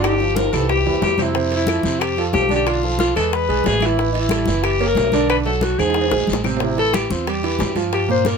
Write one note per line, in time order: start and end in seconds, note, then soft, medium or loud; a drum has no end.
0.00 0.48 G1 loud
0.00 0.15 D3 medium
0.00 0.16 D4 medium
0.00 0.37 G4 loud
0.00 0.16 D5 medium
0.00 high conga soft
0.04 high bongo medium
0.04 high timbale medium
0.04 claves medium
0.20 0.48 F3 medium
0.20 0.48 F4 medium
0.20 0.48 G4 medium
0.20 high bongo soft
0.20 high conga soft
0.36 0.54 A#4 medium
0.36 high bongo medium
0.36 high conga loud
0.36 high timbale medium
0.36 short guiro medium
0.53 0.84 C2 medium
0.53 0.80 E3 medium
0.53 0.81 E4 medium
0.53 0.81 G4 medium
0.53 0.68 A4 medium
0.53 high bongo soft
0.53 high timbale medium
0.53 short guiro medium
0.53 claves medium
0.69 1.00 G4 medium
0.69 high bongo medium
0.69 high conga soft
0.69 low timbale medium
0.69 long guiro medium
0.85 1.01 E2 medium
0.85 1.13 E3 medium
0.85 1.13 E4 medium
0.85 1.14 G4 medium
0.85 high conga soft
0.85 low timbale medium
1.02 1.79 F2 medium
1.02 1.24 G4 medium
1.02 high bongo soft
1.02 low bongo medium
1.02 high conga medium
1.02 low timbale medium
1.02 short guiro medium
1.18 1.32 C3 medium
1.18 1.32 C4 medium
1.18 1.33 C5 medium
1.18 high bongo soft
1.18 high conga medium
1.18 low timbale medium
1.18 short guiro medium
1.18 claves medium
1.23 1.55 E4 medium
1.34 1.62 C3 medium
1.34 1.62 C4 medium
1.34 1.62 C5 medium
1.34 high bongo medium
1.34 high conga soft
1.34 long guiro medium
1.51 high bongo soft
1.51 high conga soft
1.51 high timbale medium
1.56 2.02 E4 loud
1.67 1.82 F3 medium
1.67 1.82 F4 medium
1.67 1.82 A4 medium
1.67 high bongo medium
1.67 high conga medium
1.67 high timbale medium
1.67 low timbale medium
1.67 short guiro medium
1.67 claves medium
1.83 2.30 F2 medium
1.83 2.12 C3 medium
1.83 2.12 C4 medium
1.83 2.12 C5 medium
1.83 high bongo soft
1.83 high conga medium
1.83 short guiro medium
2.00 2.23 G4 medium
2.00 high bongo medium
2.00 high conga soft
2.00 high timbale medium
2.00 long guiro medium
2.00 claves medium
2.16 2.45 F3 medium
2.16 2.45 F4 medium
2.16 2.45 A4 medium
2.16 high conga soft
2.16 high timbale medium
2.33 3.11 B1 medium
2.33 2.54 G4 loud
2.33 high bongo soft
2.33 low bongo medium
2.33 high conga medium
2.33 low timbale medium
2.33 short guiro medium
2.49 2.77 D3 medium
2.49 2.77 D4 medium
2.49 2.78 D5 medium
2.49 high bongo soft
2.49 high conga medium
2.49 high timbale medium
2.49 short guiro medium
2.56 2.68 G4 medium
2.67 2.99 F4 medium
2.67 high bongo medium
2.67 high conga soft
2.67 high timbale medium
2.67 long guiro medium
2.67 claves medium
2.83 3.11 F3 medium
2.83 3.11 F4 medium
2.83 3.11 A4 medium
2.83 high bongo soft
2.83 high conga soft
2.99 3.15 F4 medium
2.99 high bongo medium
2.99 high conga medium
2.99 high timbale medium
2.99 low timbale medium
2.99 short guiro medium
3.16 3.47 E2 medium
3.16 3.44 G#3 medium
3.16 3.44 G#4 medium
3.16 3.34 A4 medium
3.16 3.44 B4 medium
3.16 high bongo soft
3.16 high timbale loud
3.16 short guiro medium
3.16 claves medium
3.33 3.68 B4 loud
3.33 high bongo medium
3.33 high conga soft
3.33 long guiro medium
3.48 3.65 B1 medium
3.48 3.76 G#3 medium
3.48 3.76 G#4 medium
3.48 3.76 B4 medium
3.48 high conga soft
3.48 high timbale medium
3.64 4.42 A1 medium
3.64 3.88 G#4 loud
3.64 high bongo soft
3.64 low bongo medium
3.64 high conga medium
3.64 high timbale medium
3.64 low timbale medium
3.64 short guiro medium
3.80 3.96 E3 medium
3.80 3.96 E4 medium
3.80 3.96 E5 medium
3.80 high bongo soft
3.80 high conga medium
3.80 high timbale medium
3.80 short guiro medium
3.80 claves medium
3.87 4.12 E4 medium
3.97 4.25 E3 medium
3.97 4.25 E4 medium
3.97 4.26 E5 medium
3.97 high bongo medium
3.97 high conga soft
3.97 long guiro medium
4.13 4.21 D#4 medium
4.13 high bongo soft
4.13 high conga soft
4.13 high timbale medium
4.19 4.65 E4 loud
4.29 4.45 G3 medium
4.29 4.45 G4 medium
4.29 4.45 A4 medium
4.29 high bongo medium
4.29 high conga loud
4.29 high timbale medium
4.29 low timbale medium
4.29 short guiro medium
4.29 claves medium
4.46 4.94 F#1 medium
4.46 4.75 E3 medium
4.46 4.75 E4 medium
4.46 4.75 E5 medium
4.46 high bongo soft
4.46 high conga medium
4.46 short guiro medium
4.63 4.89 G4 loud
4.63 high bongo medium
4.63 high conga soft
4.63 high timbale medium
4.63 long guiro medium
4.63 claves medium
4.80 5.08 A#3 medium
4.80 5.08 A#4 medium
4.80 5.08 C#5 medium
4.80 high conga soft
4.80 high timbale medium
4.87 5.29 A#4 loud
4.95 5.73 B1 medium
4.95 high bongo soft
4.95 low bongo medium
4.95 high conga medium
4.95 low timbale medium
4.95 short guiro medium
5.12 5.40 D3 medium
5.12 5.40 D4 medium
5.12 5.41 D5 medium
5.12 high bongo soft
5.12 high conga medium
5.12 high timbale medium
5.12 short guiro medium
5.29 5.37 B4 loud
5.29 high bongo medium
5.29 high conga soft
5.29 high timbale medium
5.29 long guiro medium
5.29 claves medium
5.44 5.73 F#3 medium
5.44 5.73 F#4 medium
5.44 5.64 A4 medium
5.44 5.74 A4 medium
5.44 high bongo soft
5.44 high conga soft
5.61 5.81 F#4 medium
5.61 high bongo medium
5.61 high conga medium
5.61 high timbale medium
5.61 low timbale medium
5.61 short guiro medium
5.78 6.09 E2 medium
5.78 6.06 G#3 medium
5.78 6.06 G#4 medium
5.78 6.29 G#4 medium
5.78 6.06 C5 medium
5.78 high bongo soft
5.78 high timbale medium
5.78 short guiro medium
5.78 claves medium
5.90 high timbale medium
5.94 high bongo medium
5.94 high conga soft
5.94 long guiro medium
6.01 high timbale loud
6.11 6.27 A#1 medium
6.11 6.39 G#3 medium
6.11 6.39 G#4 medium
6.11 6.39 C5 medium
6.11 high bongo loud
6.11 high conga soft
6.11 low timbale medium
6.27 7.05 A1 medium
6.27 high conga medium
6.27 short guiro medium
6.33 low bongo loud
6.44 6.58 C3 medium
6.44 6.58 C4 medium
6.44 6.59 C5 medium
6.44 low bongo medium
6.44 high conga medium
6.44 short guiro medium
6.44 claves medium
6.57 high bongo medium
6.57 low timbale loud
6.61 6.75 C3 medium
6.61 6.76 C4 medium
6.61 6.78 E4 medium
6.61 high conga soft
6.61 long guiro medium
6.77 7.04 E3 medium
6.77 7.05 E4 medium
6.77 6.96 A4 loud
6.77 high bongo soft
6.77 high conga soft
6.77 high timbale medium
6.94 7.13 G4 medium
6.94 high bongo medium
6.94 high conga loud
6.94 high timbale medium
6.94 low timbale medium
6.94 short guiro medium
7.10 7.56 E2 medium
7.10 7.24 C4 medium
7.10 7.29 F4 medium
7.10 7.25 C5 medium
7.10 high bongo soft
7.10 high conga medium
7.10 short guiro medium
7.27 7.40 G3 medium
7.27 7.41 G4 medium
7.27 7.77 G4 medium
7.27 high bongo medium
7.27 high conga soft
7.27 high timbale medium
7.27 long guiro medium
7.43 7.71 E3 medium
7.43 7.71 E4 medium
7.43 high conga soft
7.43 high timbale medium
7.59 8.36 G2 medium
7.59 high bongo soft
7.59 low bongo medium
7.59 high conga medium
7.59 low timbale medium
7.59 short guiro medium
7.76 8.03 F3 medium
7.76 8.03 F4 medium
7.76 high bongo soft
7.76 high conga medium
7.76 high timbale medium
7.76 short guiro medium
7.93 8.09 G4 medium
7.93 high bongo medium
7.93 high conga soft
7.93 high timbale medium
7.93 long guiro medium
8.08 8.36 A#2 medium
8.08 8.36 A#3 medium
8.08 8.30 C5 medium
8.08 high bongo soft
8.08 high conga soft
8.25 8.38 A#4 medium
8.25 high bongo medium
8.25 high conga medium
8.25 high timbale medium
8.25 low timbale medium
8.25 short guiro medium